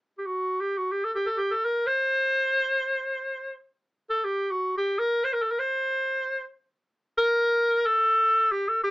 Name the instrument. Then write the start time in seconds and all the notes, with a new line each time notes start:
clarinet
0.18 G4
0.26 F#4
0.61 G4
0.78 F#4
0.92 G4
1.04 A4
1.13 G4 A4
1.26 A4
1.37 G4
1.51 A4
1.64 A#4
1.87 C5
4.10 A4
4.24 G4
4.51 F#4
4.77 G4
4.99 A#4
5.24 C5
5.33 A#4
5.42 A4
5.51 A#4
5.59 C5
7.18 A#4
7.86 A4
8.52 G4
8.68 A4
8.83 G4